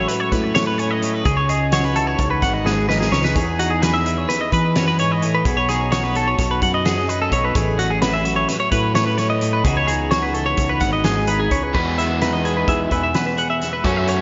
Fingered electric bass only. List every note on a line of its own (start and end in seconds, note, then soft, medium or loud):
0.32 1.21 A2 medium
1.25 2.15 C#2 medium
2.19 2.41 C#2 medium
2.42 3.08 G#1 medium
3.12 3.34 C#2 medium
3.36 4.25 E2 medium
4.52 5.41 E3 medium
5.45 6.34 B1 medium
6.39 6.60 B1 medium
6.62 7.28 F#2 medium
7.32 7.54 B1 medium
7.55 8.44 A1 loud
8.72 9.61 A2 medium
9.64 10.54 C#2 medium
10.58 10.80 C#2 medium
10.81 11.47 G#1 medium
11.51 11.73 C#2 medium
11.75 12.64 E2 medium
12.68 12.89 E2 medium
12.91 13.13 E2 medium
13.85 14.21 F#2 loud